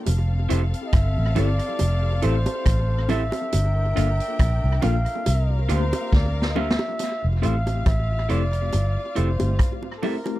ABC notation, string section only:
X:1
M:4/4
L:1/8
Q:"Swing 16ths" 1/4=69
K:F
V:1 name="String section"
[CAf]8 | [DBg]4 [CBf]4 | [Ff]8 |]